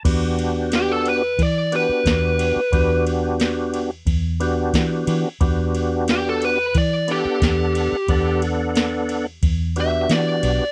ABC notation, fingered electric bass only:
X:1
M:4/4
L:1/16
Q:1/4=90
K:Em
V:1 name="Fingered electric bass" clef=bass
E,,8 E,3 z E,,3 z | E,,8 E,,4 E,2 E, z | E,,8 E,3 z E,,3 z | E,,8 E,,4 E,2 B,,, z |]